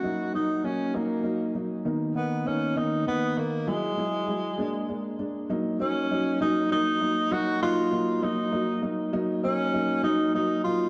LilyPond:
<<
  \new Staff \with { instrumentName = "Tenor saxophone" } { \time 6/8 \key ees \phrygian \tempo 4. = 66 ges'8 ees'8 des'8 bes4 r8 | r8 b8 des'8 dis'8 b8 ais8 | gis2~ gis8 r8 | \key ees \minor r8 des'4 ees'8 ees'4 |
ges'8 f'4 ees'4 r8 | r8 des'4 ees'8 ees'8 f'8 | }
  \new Staff \with { instrumentName = "Upright piano" } { \time 6/8 \key ees \phrygian <ges bes ees'>8 <ges bes ees'>8 <ges bes ees'>8 <ges bes ees'>8 <ges bes ees'>8 <ges bes ees'>8 | <dis ais b dis'>8 <dis ais b dis'>8 <dis ais b dis'>8 <dis ais b dis'>8 <dis ais b dis'>8 <dis ais b dis'>8 | <fis gis e'>8 <fis gis e'>8 <fis gis e'>8 <aes bes d'>8 <aes bes d'>8 <aes bes d'>8 | \key ees \minor <ges bes ees'>8 <ges bes ees'>8 <ges bes ees'>8 <ges bes ees'>8 <ges bes ees'>8 <ges bes ees'>8 |
<ges bes ees'>8 <ges bes ees'>8 <ges bes ees'>8 <ges bes ees'>8 <ges bes ees'>8 <ges bes ees'>8 | <ges bes ees'>8 <ges bes ees'>8 <ges bes ees'>8 <ges bes ees'>8 <ges bes ees'>8 <ges bes ees'>8 | }
>>